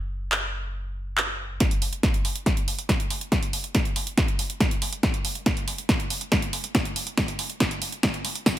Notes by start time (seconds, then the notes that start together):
Already playing: F#1
0.32 clap
1.18 clap
1.60 kick, snare, closed hi-hat
1.71 closed hi-hat
1.82 open hi-hat
1.93 closed hi-hat
2.03 kick, snare, closed hi-hat
2.14 closed hi-hat
2.25 open hi-hat
2.36 closed hi-hat
2.46 kick, snare, closed hi-hat
2.57 closed hi-hat
2.68 open hi-hat
2.79 closed hi-hat
2.89 kick, snare, closed hi-hat
3.00 closed hi-hat
3.10 open hi-hat
3.21 closed hi-hat
3.32 kick, snare, closed hi-hat
3.43 closed hi-hat
3.53 open hi-hat
3.64 closed hi-hat
3.75 kick, snare, closed hi-hat
3.85 closed hi-hat
3.96 open hi-hat
4.07 closed hi-hat
4.18 kick, snare, closed hi-hat
4.28 closed hi-hat
4.39 open hi-hat
4.50 closed hi-hat
4.60 kick, snare, closed hi-hat
4.71 closed hi-hat
4.82 open hi-hat
4.93 closed hi-hat
5.03 kick, snare, closed hi-hat
5.14 closed hi-hat
5.25 open hi-hat
5.35 closed hi-hat
5.46 kick, snare, closed hi-hat
5.57 closed hi-hat
5.68 open hi-hat
5.78 closed hi-hat
5.89 kick, snare, closed hi-hat
6.00 closed hi-hat
6.10 open hi-hat
6.21 closed hi-hat
6.32 kick, snare, closed hi-hat
6.42 closed hi-hat
6.53 open hi-hat
6.64 closed hi-hat
6.75 kick, snare, closed hi-hat
6.85 closed hi-hat
6.96 open hi-hat
7.07 closed hi-hat
7.18 kick, snare, closed hi-hat
7.28 closed hi-hat
7.39 open hi-hat
7.50 closed hi-hat
7.60 kick, snare, closed hi-hat
7.71 closed hi-hat
7.82 open hi-hat
7.92 closed hi-hat
8.03 kick, snare, closed hi-hat
8.14 closed hi-hat
8.25 open hi-hat
8.35 closed hi-hat
8.46 kick, snare, closed hi-hat, tambourine